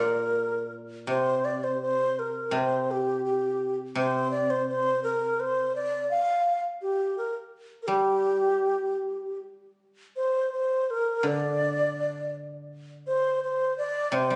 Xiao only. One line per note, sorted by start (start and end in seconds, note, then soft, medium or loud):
0.00 0.72 A#4 medium
1.09 1.46 C5 medium
1.45 1.65 D5 medium
1.64 1.81 C5 medium
1.82 2.21 C5 medium
2.19 2.57 A#4 medium
2.56 2.93 C5 medium
2.91 3.24 G4 medium
3.25 3.76 G4 medium
3.98 4.31 C5 medium
4.31 4.52 D5 medium
4.50 4.68 C5 medium
4.69 5.03 C5 medium
5.04 5.41 A#4 medium
5.40 5.75 C5 medium
5.76 6.09 D5 medium
6.11 6.61 F5 medium
6.82 7.15 G4 medium
7.18 7.35 A#4 medium
7.82 7.89 A#4 medium
7.88 9.39 G4 medium
10.16 10.50 C5 medium
10.52 10.92 C5 medium
10.90 11.29 A#4 medium
11.27 12.36 D5 medium
13.07 13.40 C5 medium
13.44 13.76 C5 medium
13.78 14.16 D5 medium
14.14 14.36 C5 medium